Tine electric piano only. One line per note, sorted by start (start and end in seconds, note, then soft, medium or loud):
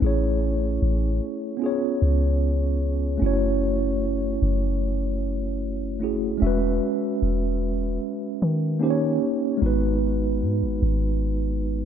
0.00 1.57 A3 medium
0.00 1.58 C#4 medium
0.00 1.59 E4 medium
0.04 1.60 G#4 medium
0.04 1.61 C#5 medium
1.57 3.16 B3 medium
1.57 3.17 C#4 medium
1.62 3.19 F4 medium
1.62 3.20 G#4 medium
1.66 3.21 C#5 medium
3.18 5.96 A3 medium
3.18 5.97 C#4 medium
3.22 5.98 E4 medium
3.22 5.99 F#4 medium
3.26 6.00 C#5 medium
6.00 6.41 A3 medium
6.00 6.39 C#4 medium
6.00 6.42 E4 medium
6.00 6.42 F#4 medium
6.04 6.43 G#4 medium
6.38 8.76 G#3 medium
6.38 8.77 C#4 medium
6.42 8.79 F#4 medium
6.42 8.78 E5 medium
6.47 8.80 B4 medium
8.79 9.61 A#3 medium
8.79 9.61 C#4 medium
8.79 9.61 D#4 medium
8.79 9.62 G4 medium
8.84 8.89 C5 medium
8.90 9.66 C#5 medium
9.57 11.85 G#3 medium
9.57 11.85 B3 medium
9.62 11.85 D#4 medium
9.62 11.85 F#4 medium
9.66 11.85 B4 medium